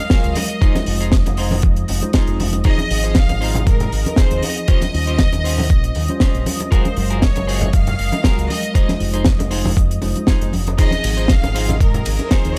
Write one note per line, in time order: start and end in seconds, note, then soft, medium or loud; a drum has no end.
0.00 2.64 D#5 medium
0.00 0.36 F5 loud
0.10 0.59 F#3 medium
0.10 0.59 G#3 medium
0.10 0.36 F4 medium
0.10 0.36 F#4 medium
0.10 0.36 G#4 medium
0.10 0.36 A#4 loud
0.10 0.59 A#4 loud
0.10 0.59 F5 medium
0.10 kick loud
0.10 snare loud
0.10 closed hi-hat medium
0.24 0.34 C#2 medium
0.24 closed hi-hat medium
0.35 0.87 D#5 loud
0.35 open hi-hat loud
0.35 high conga loud
0.49 closed hi-hat medium
0.61 1.99 G#3 medium
0.61 0.75 D#4 loud
0.61 0.75 F4 loud
0.61 1.99 F4 medium
0.61 0.75 G#4 loud
0.61 0.75 C5 loud
0.61 2.00 C5 loud
0.61 kick loud
0.61 closed hi-hat medium
0.75 snare soft
0.75 closed hi-hat medium
0.75 high conga medium
0.86 1.22 F1 loud
0.86 muted clean electric guitar stroke soft
0.86 open hi-hat loud
1.01 1.12 D#4 medium
1.01 1.12 F4 medium
1.01 1.12 G#4 medium
1.01 1.13 C5 medium
1.01 closed hi-hat medium
1.12 kick loud
1.12 snare loud
1.12 closed hi-hat medium
1.12 high conga medium
1.26 1.59 F1 loud
1.26 muted clean electric guitar stroke loud
1.26 closed hi-hat medium
1.26 muted conga medium
1.37 1.58 D#4 medium
1.37 1.58 F4 medium
1.37 1.58 G#4 medium
1.37 1.58 C5 medium
1.37 open hi-hat loud
1.51 open hi-hat medium
1.51 high conga loud
1.51 low conga medium
1.62 1.84 F2 medium
1.62 kick loud
1.62 closed hi-hat medium
1.76 muted clean electric guitar stroke soft
1.76 closed hi-hat medium
1.88 2.00 F1 medium
1.88 open hi-hat loud
1.88 muted conga medium
2.01 2.11 G#3 medium
2.01 2.11 D#4 medium
2.01 2.11 F4 medium
2.01 2.11 C5 loud
2.01 closed hi-hat medium
2.01 high conga medium
2.13 2.62 G#3 medium
2.13 2.40 D#4 medium
2.13 2.62 F4 medium
2.13 2.40 F4 medium
2.13 2.40 G#4 medium
2.13 2.62 C5 medium
2.13 2.40 C5 medium
2.13 kick loud
2.13 snare loud
2.13 closed hi-hat medium
2.27 2.61 F1 medium
2.27 closed hi-hat medium
2.40 open hi-hat loud
2.40 high conga loud
2.53 closed hi-hat medium
2.53 muted conga medium
2.64 4.14 F3 medium
2.64 4.14 C4 medium
2.64 2.79 D#4 loud
2.64 4.15 D#4 medium
2.64 2.79 F4 loud
2.64 2.79 G#4 medium
2.64 4.15 G#4 loud
2.64 2.79 C5 loud
2.64 10.77 D#5 medium
2.64 3.13 D#5 loud
2.64 kick loud
2.64 closed hi-hat medium
2.78 closed hi-hat medium
2.78 high conga medium
2.90 3.25 G#1 loud
2.90 muted clean electric guitar stroke soft
2.90 open hi-hat loud
3.04 3.16 D#4 medium
3.04 3.16 F4 medium
3.04 3.16 G#4 medium
3.04 3.16 C5 loud
3.04 closed hi-hat medium
3.15 3.67 F5 loud
3.15 kick loud
3.15 snare loud
3.15 closed hi-hat medium
3.15 high conga medium
3.29 3.63 G#1 loud
3.29 muted clean electric guitar stroke loud
3.29 closed hi-hat medium
3.29 muted conga medium
3.41 3.61 D#4 medium
3.41 3.61 F4 medium
3.41 3.61 G#4 medium
3.41 3.61 C5 medium
3.41 open hi-hat loud
3.55 closed hi-hat medium
3.55 high conga medium
3.55 low conga medium
3.67 3.87 G#2 medium
3.67 4.14 A#4 loud
3.67 kick loud
3.67 closed hi-hat loud
3.80 muted clean electric guitar stroke soft
3.80 closed hi-hat medium
3.80 low conga medium
3.92 4.03 G#1 medium
3.92 open hi-hat medium
4.06 closed hi-hat medium
4.06 muted conga medium
4.06 high conga medium
4.16 4.65 F3 medium
4.16 4.65 C4 medium
4.16 4.43 D#4 medium
4.16 4.66 D#4 medium
4.16 4.43 F4 medium
4.16 4.66 G#4 loud
4.16 4.43 G#4 medium
4.16 4.43 C5 loud
4.16 4.43 C5 medium
4.16 kick loud
4.16 snare loud
4.16 closed hi-hat loud
4.31 4.41 D#2 medium
4.31 closed hi-hat medium
4.42 6.46 D#5 loud
4.42 open hi-hat loud
4.42 high conga medium
4.57 closed hi-hat medium
4.67 6.05 G3 medium
4.67 4.82 C#4 loud
4.67 6.06 C#4 medium
4.67 4.82 F4 loud
4.67 6.06 F4 medium
4.67 4.82 G4 loud
4.67 4.82 C5 loud
4.67 6.07 C5 loud
4.67 kick loud
4.67 closed hi-hat medium
4.81 snare soft
4.81 closed hi-hat medium
4.81 high conga medium
4.94 5.29 D#2 loud
4.94 muted clean electric guitar stroke soft
4.94 open hi-hat medium
5.07 5.19 C#4 medium
5.07 5.19 F4 medium
5.07 5.19 G4 medium
5.07 5.19 C5 medium
5.07 closed hi-hat medium
5.19 kick loud
5.19 snare loud
5.19 closed hi-hat loud
5.19 high conga medium
5.33 5.66 D#2 loud
5.33 muted clean electric guitar stroke loud
5.33 closed hi-hat medium
5.33 muted conga medium
5.44 5.64 C#4 medium
5.44 5.64 F4 medium
5.44 5.64 G4 medium
5.44 5.64 C5 medium
5.44 open hi-hat loud
5.58 open hi-hat medium
5.58 high conga medium
5.58 low conga medium
5.70 5.90 A#1 medium
5.70 kick loud
5.70 closed hi-hat medium
5.83 muted clean electric guitar stroke soft
5.83 closed hi-hat medium
5.95 6.06 D#2 medium
5.95 open hi-hat loud
5.95 muted conga soft
6.08 6.18 G3 loud
6.08 6.18 C#4 medium
6.08 6.19 F4 medium
6.08 6.19 C5 loud
6.08 closed hi-hat medium
6.08 high conga medium
6.20 6.46 C#4 medium
6.20 6.46 F4 medium
6.20 6.46 G4 medium
6.20 6.46 C5 medium
6.20 kick loud
6.20 snare loud
6.20 closed hi-hat loud
6.35 6.44 A#1 medium
6.35 closed hi-hat soft
6.46 open hi-hat loud
6.46 high conga medium
6.60 closed hi-hat medium
6.60 muted conga medium
6.71 8.22 F#3 medium
6.71 8.21 G#3 medium
6.71 6.85 F4 loud
6.71 6.85 F#4 loud
6.71 6.85 G#4 medium
6.71 6.85 A#4 loud
6.71 8.22 A#4 loud
6.71 7.19 C5 loud
6.71 8.22 F5 medium
6.71 kick loud
6.71 closed hi-hat medium
6.85 closed hi-hat medium
6.85 high conga medium
6.97 7.32 F#1 medium
6.97 muted clean electric guitar stroke soft
6.97 open hi-hat loud
7.10 7.22 F4 medium
7.10 7.23 F#4 medium
7.10 7.22 G#4 medium
7.10 7.22 A#4 medium
7.10 closed hi-hat medium
7.22 7.74 C#5 medium
7.22 kick loud
7.22 snare loud
7.22 closed hi-hat medium
7.22 high conga medium
7.36 7.69 F#1 medium
7.36 muted clean electric guitar stroke loud
7.36 closed hi-hat medium
7.36 muted conga medium
7.47 7.67 F4 medium
7.47 7.67 F#4 medium
7.47 7.67 G#4 medium
7.47 7.67 C5 loud
7.47 open hi-hat loud
7.61 closed hi-hat medium
7.61 high conga medium
7.61 low conga medium
7.73 7.94 F#2 medium
7.73 8.46 F5 loud
7.73 kick loud
7.73 closed hi-hat loud
7.87 muted clean electric guitar stroke soft
7.87 closed hi-hat medium
7.87 low conga medium
7.99 8.10 F#1 medium
7.99 open hi-hat loud
8.12 closed hi-hat medium
8.12 muted conga medium
8.12 high conga medium
8.23 8.73 F#3 medium
8.23 8.72 G#3 medium
8.23 8.49 F4 medium
8.23 8.50 F#4 medium
8.23 8.49 G#4 medium
8.23 8.49 A#4 medium
8.23 8.73 A#4 loud
8.23 8.72 F5 medium
8.23 kick loud
8.23 snare loud
8.23 closed hi-hat loud
8.38 8.47 C#2 medium
8.38 closed hi-hat medium
8.50 8.97 D#5 loud
8.50 open hi-hat loud
8.50 high conga medium
8.63 closed hi-hat medium
8.74 9.99 G#3 medium
8.74 8.88 D#4 loud
8.74 10.00 D#4 medium
8.74 8.88 F4 loud
8.74 10.00 F4 medium
8.74 8.88 G#4 medium
8.74 8.88 C5 loud
8.74 kick loud
8.74 closed hi-hat loud
8.89 snare soft
8.89 closed hi-hat medium
8.89 high conga loud
9.00 9.35 F1 loud
9.00 muted clean electric guitar stroke soft
9.00 open hi-hat loud
9.13 9.26 D#4 medium
9.13 9.26 F4 medium
9.13 9.26 G#4 medium
9.13 9.26 C5 loud
9.13 closed hi-hat medium
9.25 kick loud
9.25 snare loud
9.25 closed hi-hat medium
9.25 high conga medium
9.39 9.73 F1 medium
9.39 muted clean electric guitar stroke loud
9.39 closed hi-hat medium
9.39 muted conga medium
9.51 9.71 D#4 medium
9.51 9.71 F4 medium
9.51 9.71 G#4 medium
9.51 9.71 C5 medium
9.51 open hi-hat loud
9.65 open hi-hat medium
9.65 high conga medium
9.65 low conga medium
9.77 9.97 F2 medium
9.77 kick loud
9.77 closed hi-hat medium
9.89 muted clean electric guitar stroke soft
9.89 closed hi-hat medium
10.02 10.13 F1 medium
10.02 10.38 G#3 medium
10.02 10.38 D#4 medium
10.02 10.38 F4 medium
10.02 10.38 C5 medium
10.02 open hi-hat loud
10.02 muted conga medium
10.16 closed hi-hat medium
10.16 high conga medium
10.27 10.53 D#4 medium
10.27 10.53 F4 medium
10.27 10.53 G#4 medium
10.27 10.53 C5 medium
10.27 kick loud
10.27 snare loud
10.27 closed hi-hat loud
10.41 10.75 F1 loud
10.41 10.52 G#3 medium
10.41 10.52 D#4 medium
10.41 10.52 F4 medium
10.41 10.52 D#5 medium
10.41 closed hi-hat medium
10.53 open hi-hat medium
10.53 high conga medium
10.67 closed hi-hat medium
10.67 muted conga medium
10.78 12.28 F3 loud
10.78 12.28 C4 medium
10.78 10.92 D#4 loud
10.78 12.29 D#4 medium
10.78 10.92 F4 loud
10.78 10.92 G#4 loud
10.78 12.29 G#4 loud
10.78 10.92 C5 loud
10.78 12.59 D#5 medium
10.78 11.26 D#5 loud
10.78 kick loud
10.78 closed hi-hat loud
10.78 crash medium
10.91 closed hi-hat medium
10.91 high conga medium
11.04 11.39 G#1 medium
11.04 muted clean electric guitar stroke soft
11.04 open hi-hat loud
11.04 ride medium
11.17 11.29 D#4 medium
11.17 11.29 F4 medium
11.17 11.29 G#4 medium
11.17 11.29 C5 loud
11.17 closed hi-hat medium
11.28 11.80 F5 loud
11.28 kick loud
11.28 snare loud
11.28 closed hi-hat loud
11.28 high conga medium
11.43 11.76 G#1 medium
11.43 muted clean electric guitar stroke loud
11.43 closed hi-hat medium
11.43 muted conga medium
11.55 11.75 D#4 medium
11.55 11.75 F4 medium
11.55 11.74 G#4 medium
11.55 11.75 C5 loud
11.55 open hi-hat loud
11.55 ride medium
11.69 closed hi-hat medium
11.69 high conga medium
11.69 low conga medium
11.80 12.01 G#2 medium
11.80 12.28 A#4 loud
11.80 kick loud
11.80 closed hi-hat loud
11.94 muted clean electric guitar stroke soft
11.94 closed hi-hat medium
11.94 low conga medium
12.05 12.17 G#1 medium
12.05 open hi-hat medium
12.05 ride medium
12.19 closed hi-hat medium
12.19 muted conga medium
12.19 high conga medium
12.31 12.59 F3 medium
12.31 12.59 C4 medium
12.31 12.57 D#4 medium
12.31 12.59 D#4 medium
12.31 12.57 F4 medium
12.31 12.59 G#4 loud
12.31 12.57 G#4 medium
12.31 12.57 A#4 medium
12.31 12.56 C5 loud
12.31 kick loud
12.31 snare loud
12.31 closed hi-hat loud
12.45 12.54 D#2 medium
12.45 closed hi-hat medium